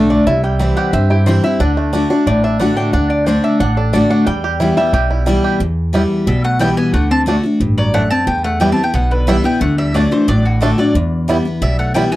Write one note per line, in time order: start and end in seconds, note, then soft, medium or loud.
0.00 0.22 B1 medium
0.00 0.23 A2 medium
0.00 0.25 D3 medium
0.00 0.25 A3 medium
0.00 0.27 A3 medium
0.00 0.26 D4 medium
0.00 0.26 F#4 medium
0.10 0.26 D4 medium
0.10 0.26 D5 medium
0.26 0.71 C2 medium
0.26 0.90 C3 medium
0.26 0.74 E4 medium
0.26 0.43 E5 medium
0.44 0.90 G3 medium
0.44 0.54 G5 loud
0.59 0.91 E3 medium
0.59 0.92 G3 medium
0.59 0.92 C4 medium
0.59 0.93 E4 medium
0.77 1.24 G4 medium
0.77 0.93 F#5 loud
0.93 1.37 G2 medium
0.93 1.57 G2 loud
0.93 1.26 C4 medium
0.93 1.10 E5 loud
1.10 1.43 E4 medium
1.10 1.26 G4 medium
1.26 1.43 E3 medium
1.26 1.43 G3 medium
1.26 1.60 C4 medium
1.26 1.44 C4 medium
1.26 1.42 E4 loud
1.26 1.43 C5 medium
1.43 1.61 C4 medium
1.43 1.59 E4 medium
1.43 1.60 E4 medium
1.43 1.60 E5 loud
1.60 2.04 D2 medium
1.60 1.91 D3 medium
1.60 1.93 D4 medium
1.60 1.70 F#5 loud
1.77 3.17 A3 medium
1.93 2.09 D3 medium
1.93 2.10 A3 medium
1.93 2.09 D4 medium
1.93 2.10 D4 medium
1.93 2.09 F#4 medium
2.10 2.26 D4 medium
2.10 2.27 D4 soft
2.10 2.26 F#4 medium
2.27 2.71 A1 medium
2.27 2.90 A2 loud
2.27 2.43 D4 medium
2.27 2.43 D5 medium
2.44 2.59 D4 medium
2.44 2.60 E5 medium
2.60 2.92 D3 medium
2.60 2.92 A3 medium
2.60 2.76 D4 medium
2.60 2.92 D4 loud
2.60 2.93 F#4 loud
2.60 2.76 F#5 medium
2.77 2.92 D4 medium
2.77 2.93 G5 loud
2.93 3.37 D2 medium
2.93 3.25 D3 medium
2.93 3.25 D4 medium
2.93 3.10 F#5 loud
3.10 3.26 D5 medium
3.26 3.58 D3 medium
3.26 3.59 A3 medium
3.26 3.43 D4 medium
3.26 3.59 D4 medium
3.26 3.59 F#4 loud
3.26 3.43 C5 medium
3.44 3.59 D4 medium
3.44 3.60 E5 loud
3.60 4.04 A1 medium
3.60 4.24 A2 medium
3.60 3.76 D4 medium
3.60 3.77 F#5 loud
3.77 3.92 D4 medium
3.77 3.93 A4 medium
3.93 4.25 D3 medium
3.93 4.25 A3 medium
3.93 4.09 D4 medium
3.93 4.26 D4 medium
3.93 4.26 F#4 loud
3.93 4.10 D5 medium
4.10 4.27 D4 medium
4.10 4.26 F#5 loud
4.26 4.71 E2 medium
4.26 4.90 E2 medium
4.26 4.74 G3 medium
4.26 4.74 G5 loud
4.44 4.90 G4 medium
4.60 4.76 E3 medium
4.60 4.77 G3 medium
4.60 4.77 B3 medium
4.60 5.07 E4 medium
4.60 4.76 E4 medium
4.77 5.24 G3 medium
4.77 4.94 B3 soft
4.77 4.93 E4 medium
4.77 5.08 E5 loud
4.93 5.37 B1 medium
4.93 5.57 B2 medium
4.93 5.40 G4 medium
5.11 5.57 E4 medium
5.26 5.58 E3 medium
5.26 5.60 G3 medium
5.26 5.59 G3 medium
5.26 5.59 B3 medium
5.26 5.59 E4 loud
5.44 5.60 G4 medium
5.60 6.04 E2 medium
5.60 6.24 E2 loud
5.93 6.25 E3 medium
5.93 6.25 G3 medium
5.93 6.01 G3 medium
5.93 6.26 B3 medium
5.93 6.02 B3 medium
5.93 6.02 E4 medium
5.93 6.26 E4 medium
6.27 6.71 B1 medium
6.27 6.91 B2 medium
6.27 6.43 G3 medium
6.27 6.44 E5 medium
6.44 6.59 A3 medium
6.44 6.60 F#5 medium
6.59 6.92 E3 medium
6.59 6.92 G3 medium
6.59 6.68 G3 medium
6.59 6.76 B3 medium
6.59 6.93 B3 medium
6.59 6.69 B3 medium
6.59 6.93 E4 medium
6.59 6.69 E4 medium
6.59 6.77 G5 medium
6.77 6.93 B3 medium
6.77 6.93 G#5 medium
6.93 7.38 D2 medium
6.93 7.25 D3 medium
6.93 7.10 A3 medium
6.93 7.10 F#5 medium
7.11 7.26 C4 medium
7.11 7.21 A5 loud
7.26 7.43 D3 medium
7.26 7.43 A3 medium
7.26 7.35 A3 medium
7.26 7.44 D4 medium
7.26 7.35 D4 medium
7.26 7.42 F#4 medium
7.43 7.61 D4 soft
7.43 7.60 F#4 medium
7.60 8.05 A1 medium
7.60 7.92 G2 medium
7.78 7.93 F#3 medium
7.78 7.94 D5 medium
7.94 8.26 F#2 medium
7.94 8.10 A3 medium
7.94 8.02 A3 medium
7.94 8.02 D4 medium
7.94 8.10 F#5 medium
8.11 8.27 C4 medium
8.11 8.27 A5 loud
8.27 8.71 E2 medium
8.27 8.91 E2 medium
8.27 8.43 B3 medium
8.27 8.44 G5 medium
8.44 8.60 A3 medium
8.44 8.60 F#5 loud
8.60 8.77 E3 medium
8.60 8.77 G3 medium
8.60 8.69 G3 medium
8.60 8.71 B3 medium
8.60 8.78 B3 medium
8.60 8.69 B3 medium
8.60 8.75 E4 medium
8.60 8.69 E4 medium
8.60 8.72 G5 medium
8.72 8.82 C4 medium
8.72 8.83 A5 loud
8.76 8.94 B3 soft
8.76 8.93 E4 medium
8.83 8.93 B3 medium
8.83 8.94 G5 medium
8.94 9.38 B1 medium
8.94 9.58 B2 loud
8.94 9.10 B3 medium
8.94 9.11 F#5 medium
9.11 9.27 D3 medium
9.11 9.27 B4 medium
9.27 9.44 E3 medium
9.27 9.44 G3 medium
9.27 9.36 G3 medium
9.27 9.44 G3 medium
9.27 9.45 B3 medium
9.27 9.36 B3 medium
9.27 9.36 E4 medium
9.27 9.43 E4 medium
9.27 9.44 E5 medium
9.44 9.60 B3 medium
9.44 9.61 B3 medium
9.44 9.60 E4 medium
9.44 9.61 G5 loud
9.61 10.05 D2 medium
9.61 9.93 D3 medium
9.61 9.77 A3 medium
9.61 9.78 F#5 medium
9.78 9.93 G3 medium
9.78 9.94 E5 medium
9.94 10.11 D3 medium
9.94 10.11 F#3 medium
9.94 10.11 A3 medium
9.94 10.03 A3 medium
9.94 10.03 D4 medium
9.94 10.12 D4 medium
9.94 10.10 F#4 medium
9.94 10.11 D5 medium
10.11 10.27 E3 medium
10.11 10.28 D4 soft
10.11 10.27 F#4 medium
10.11 10.28 C5 medium
10.28 10.72 A1 medium
10.28 10.92 A2 loud
10.28 10.44 F#3 medium
10.28 10.45 D5 loud
10.45 10.60 A2 medium
10.45 10.61 F#4 medium
10.61 10.78 D3 medium
10.61 10.77 D3 medium
10.61 10.78 A3 medium
10.61 10.69 A3 medium
10.61 10.78 D4 medium
10.61 10.70 D4 medium
10.61 10.77 F#4 loud
10.61 10.78 A4 medium
10.78 10.94 F#3 medium
10.78 10.95 D4 medium
10.78 10.94 F#4 medium
10.78 10.95 D5 medium
10.95 11.39 E2 medium
10.95 11.59 E2 medium
11.28 11.45 E3 medium
11.28 11.45 G3 medium
11.28 11.36 G3 medium
11.28 11.36 B3 medium
11.28 11.45 B3 medium
11.28 11.37 E4 medium
11.28 11.44 E4 medium
11.45 11.62 B3 soft
11.45 11.61 E4 medium
11.62 12.06 B1 medium
11.62 12.16 B2 medium
11.62 11.78 G3 medium
11.62 11.79 E5 medium
11.79 11.94 A3 medium
11.79 11.94 F#5 medium
11.94 12.11 E3 medium
11.94 12.11 G3 loud
11.94 12.03 G3 medium
11.94 12.11 B3 medium
11.94 12.12 B3 medium
11.94 12.03 B3 medium
11.94 12.10 E4 loud
11.94 12.03 E4 medium
11.94 12.11 G5 medium
12.12 12.16 B3 medium
12.12 12.16 E4 medium
12.12 12.16 G#5 loud